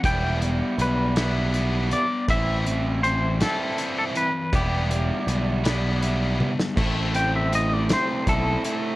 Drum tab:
CC |------------|------------|------------|x-----------|
HH |x-x-x-x-x-x-|x-x-x-x-x-x-|x-x-x-x-x---|--x-x-x-x-x-|
SD |------o-----|------o-----|------o----o|------o-----|
T1 |------------|------------|----------o-|------------|
BD |o-----------|o-----------|o-----------|o-------o---|